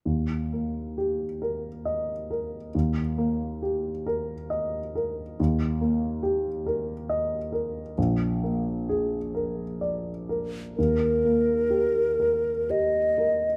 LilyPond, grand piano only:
\new Staff \with { instrumentName = "Grand piano" } { \time 3/4 \key ees \major \tempo 4 = 67 ees,8 bes8 g'8 bes'8 ees''8 bes'8 | ees,8 bes8 g'8 bes'8 ees''8 bes'8 | ees,8 bes8 g'8 bes'8 ees''8 bes'8 | bes,,8 bes8 aes'8 bes'8 d''8 bes'8 |
ees,8 bes8 g'8 bes'8 g'8 bes'8 | }